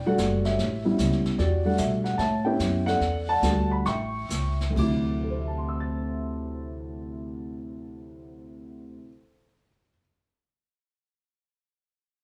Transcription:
Already playing: E1 B4
0.06 G3 A3 D4 F#4 A4 D5 F#5
0.18 F#1, snare, hi-hat pedal
0.45 G4 C#5 E5, snare
0.59 A1, brush sweep, snare
0.85 G3 B3 C#4 E4
0.98 C#2, snare, hi-hat pedal
1.12 snare
1.25 muted upright bass stroke, snare
1.38 E2 F#4 G4 D5, brush sweep, snare
1.65 G3 A3 D4 F#5
1.78 B2 E5, snare, hi-hat pedal
2.04 F#5, snare
2.18 A2 C#5 E5 A5, brush sweep, snare
2.45 B3 C#4 E4 G4 B4 C#5 G5
2.59 F#2, snare, hi-hat pedal
2.86 A4 D5 F#5, snare
3.00 E2, brush sweep, snare
3.29 D5 F#5 A5
3.42 D2 G3 A3 D4 F#4, snare, hi-hat pedal
3.71 B5
3.85 A1 E5 G5 C#6, brush sweep, snare
4.29 C#2, snare, hi-hat pedal
4.61 snare
4.70 D2
4.74 D2 C3 F#3, kick, crash
4.78 E4 D6
5.23 A4
5.30 C5
5.39 E5
5.47 A5
5.58 C6
5.69 E6
5.80 A6

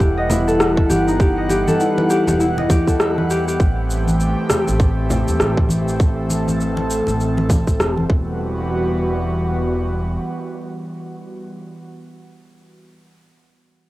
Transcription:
Already playing: E1 E3 G3 B3 E4 A4 B4 E5 F#5
0.00 G4, kick, muted conga, shaker
0.17 D#5
0.30 E4, low conga, shaker
0.48 A4, shaker
0.60 E4, cross-stick, shaker
0.77 A4, kick
0.90 G1 G4, high conga, shaker
1.07 D#4, shaker
1.20 G4, kick, shaker
1.38 D#5
1.49 G4, muted conga, shaker
1.68 A4, high conga, shaker
1.80 E4, shaker
1.98 B4, muted conga
2.10 G4, shaker
2.27 E1 G4, muted conga, shaker
2.40 E4, shaker
2.58 D#5, muted conga
2.70 E2 G4, kick, high conga, low conga, shaker
2.87 A4, kick, shaker
3.00 E5, cross-stick, shaker
3.18 B4, high conga
3.30 G4, shaker
3.48 G4, shaker
3.59 A1 A3 C4 G4, kick, shaker
3.90 shaker
4.07 high conga, shaker
4.20 shaker
4.50 cross-stick, low conga, shaker
4.68 A1, shaker
4.80 kick, muted conga, shaker
5.10 low conga, shaker
5.28 D#2, shaker
5.40 A1, cross-stick, shaker
5.57 kick
5.69 high conga, shaker
5.88 shaker
6.00 A4, kick, shaker
6.30 muted conga, shaker
6.48 high conga, shaker
6.61 shaker
6.77 muted conga
6.90 shaker
7.07 A1, muted conga, shaker
7.20 shaker
7.37 muted conga, high conga
7.49 kick, high conga, low conga, shaker
7.67 kick, shaker
7.80 E1, cross-stick, shaker
7.97 high conga
8.10 E1 E3 G3 B3 F#4, kick

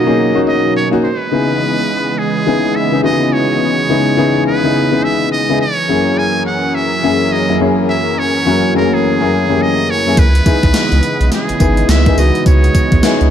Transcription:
Already playing: B2 F#3 A#3 C#4 D#4 F4 F#4 D#5
0.06 A#3 C#4 D#4 G#4
0.34 A#3 C#4 D#4 F#4
0.48 D#5
0.76 C#5
0.91 A#3 C#4 D#4 F#4
1.03 C#3 E3 G#3 B3 B4 D#5
1.31 C#3 B3 D#4 E4 G#4
2.18 G#4
2.46 C#3 B3 D#4 E4 G#4
2.76 E5
2.92 C#3 B3 D#4 E4 G#4
3.03 C#3 B3 D#4 E4 F#4 D#5
3.11 G#4
3.33 C#5
3.89 C#3 B3 D#4 E4 G#4
4.17 C#3 B3 D#4 E4 G#4
4.47 B4
4.63 C#3 B3 D#4 E4 G#4
4.92 C#3 B3 D#4 E4 G#4
5.04 E5
5.32 D#5
5.49 C#3 B3 D#4 E4 G#4
5.60 E3 F#3 C#4 G#4 A#4 C#5
5.88 F#2 A#3 C#4 E4 G#4
6.18 G#5
6.46 F#5
6.75 E5
7.03 F#2 A#3 C#4 E4 G#4
7.32 D#5
7.49 F#2 A#3 C#4 E4 G#4
7.60 F#2 A#3 C#4 E4 G#4
7.90 E5
8.19 C#5
8.46 F#2 A#3 C#4 E4 F#4
8.74 F#2 A3 C#4 E4 G#4 A#4
8.81 A#3
8.94 G#4
9.21 F#2 A#3 C#4 E4 G#4
9.49 F#2 A#3 C#4 E4 G4
9.57 G#4
9.62 D#5
9.90 C#5
10.07 F#2 A#3 C#4 E4 G#4
10.17 C#2 C#3 G#3 B3 B4 D#5, kick, closed hi-hat, tambourine
10.35 closed hi-hat
10.46 B3 D#4 E4 G#4, kick, closed hi-hat, tambourine
10.63 B1, kick, closed hi-hat
10.74 snare, closed hi-hat, tambourine
10.92 C#2, closed hi-hat
11.03 closed hi-hat
11.21 B1, closed hi-hat
11.32 G#4, snare, closed hi-hat, tambourine
11.49 G#1, closed hi-hat
11.60 G#1 B3 D#4 E4 G#4, kick, closed hi-hat, tambourine
11.77 closed hi-hat
11.88 C#2 E5, snare, closed hi-hat, tambourine
12.06 B3 D#4 E4 G#4, kick, closed hi-hat
12.17 C#2 B3 D#4 E4 F#4 D#5, open hi-hat, tambourine
12.35 closed hi-hat
12.46 C#2 C#5, kick, closed hi-hat, tambourine
12.64 closed hi-hat
12.75 kick, closed hi-hat, tambourine
12.92 B1, kick, closed hi-hat
13.03 B3 D#4 E4 G#4, snare, closed hi-hat, tambourine
13.21 C#2, closed hi-hat

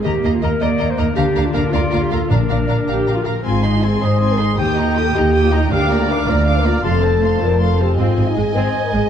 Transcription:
Already playing: D#4
0.04 D#2 D#3 A#3 G4 D#5 A#5
0.24 D#2 A#3 D#4 D#5 A#5
0.34 F4
0.41 D#2 A#3 A#4 D#5 A#5
0.61 D#2 A#3 D5 D#5 A#5
0.79 D#2 A#3 A#4 D#5 A#5
0.90 C5
0.97 D#2 A#3 D#4 A#4 D#5 A#5
1.16 D2 D3 A#3 D4 G4 F5 A#5
1.35 D2 A#3 F5 A#5
1.46 F4
1.54 D2 A#3 A#4 F5 A#5
1.72 D2 A#3 F4 D5 F5 A#5
1.92 D2 A#3 A#4 F5 A#5
2.02 G4
2.11 D2 A#3 F4 A4 F5 A#5
2.30 A#1 A#2 D4 A#4 F5 A#5
2.49 A#1 D4 F5 A#5
2.68 A#1 D4 A#4 F5 A#5
2.88 A#1 G4 D5 F5 A#5
3.07 A#1 A#4 F5 A#5
3.17 F4
3.26 A#1 F4 A#4 F5 A#5
3.44 G#1 G#2 C4 F4 G#5 C6
3.64 D#4 G#4 G#5 C6
3.75 D#4
3.82 C4 G4 G#4 G#5 C6
4.01 G#1 G#2 D#4 G#4 C5 D#5 G#5 C6
4.20 C4 D#4 G#5 C6
4.32 A#4
4.39 D#4 G#4 C5 G#5 C6
4.58 D#2 D#3 G4 G5 D#6
4.77 D#4 G4 D#5 A#5
4.87 G4
4.97 F4 G4 A4 G5 D#6
5.15 D#2 D#4 G4 D#5 A#5
5.34 D#4 G4 G5 D#6
5.44 F4
5.52 D#4 A#4 D#5 A#5
5.71 D2 D4 G4 A#4 F5 D6
5.89 A#3 F4 D5 A#5
6.00 F4
6.09 D4 D#4 A#4 F5 D6
6.27 D2 A#3 F4 D5 F5 A#5
6.47 A#3 D4 F5 D6
6.57 A#4
6.65 A#3 F4 A#4 D5 A#5
6.84 F1 F2 A3 A4 F5 A5 C6
7.03 C4 F4 C5 A5
7.22 A3 D#4 F5 C6
7.41 F1 F2 C4 F4 A#4 C5 D5 A5
7.60 A3 C4 A4 F5 C6
7.71 C5
7.79 C4 G4 A4 C5 F5 A5
7.97 G#1 G#2 C4 F4 D#5 G#5
8.17 G#1 G#2 C4 D#4
8.28 D#4
8.36 G#1 G#2 G#3 G#4
8.55 G#1 G#2 C4 D#4 C5 G#5
8.74 C4
8.83 A#4
8.92 G#1 G#2 G#3 G#4

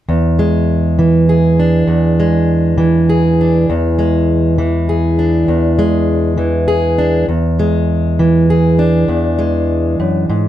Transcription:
0.09 E2
0.39 G#3
0.99 E3
1.29 G#4
1.59 D4
1.87 E2
2.20 G#3
2.78 E3
3.10 G#4
3.41 D4
3.70 E2
3.99 G#3
4.58 E3
4.89 G#4
5.19 D4
5.48 E2
5.79 G#3
6.38 E3
6.68 G#4
6.98 D4
7.28 E2
7.59 G#3
8.19 E3
8.50 G#4
8.79 D4
9.08 E2
9.39 G#3
10.00 F#2
10.30 G#2

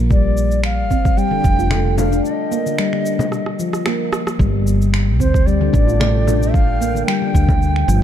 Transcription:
Already playing: A#1
0.10 G3 D5, kick, shaker
0.37 shaker
0.51 shaker
0.64 F5, finger snap, shaker
0.91 F1 C4, kick, shaker
1.05 kick, shaker
1.17 G3 G5, shaker
1.31 D3
1.44 F1, kick, shaker
1.59 F4, shaker
1.70 A3, finger snap, frame drum, shaker
1.98 D4 F5, frame drum, shaker
2.12 D4, shaker
2.25 D#5, shaker
2.52 A#3, shaker
2.66 D3, shaker
2.79 G3, finger snap, shaker
2.93 D3, finger snap
3.06 shaker
3.19 frame drum, shaker
3.32 cross-stick, shaker
3.46 cross-stick
3.59 F3, shaker
3.73 cross-stick, shaker
3.86 A#3, finger snap, cross-stick, shaker
4.13 cross-stick, shaker
4.27 cross-stick, shaker
4.39 G1 G3 G5, kick, shaker
4.67 shaker
4.82 shaker
4.94 finger snap, shaker
5.20 D2 C4 C5, kick, shaker
5.34 kick, shaker
5.47 G3 D5, shaker
5.61 D3
5.73 A1 D4, kick, shaker
5.87 F4, shaker
6.00 A3, finger snap, frame drum, shaker
6.27 D4, frame drum, shaker
6.43 shaker
6.53 F5, kick, shaker
6.81 A#3, shaker
6.95 D3, shaker
7.06 G3 G5, finger snap, shaker
7.22 D3
7.34 D2, kick, shaker
7.49 kick, frame drum, shaker
7.62 shaker
7.76 finger snap
7.88 G1 F3, shaker

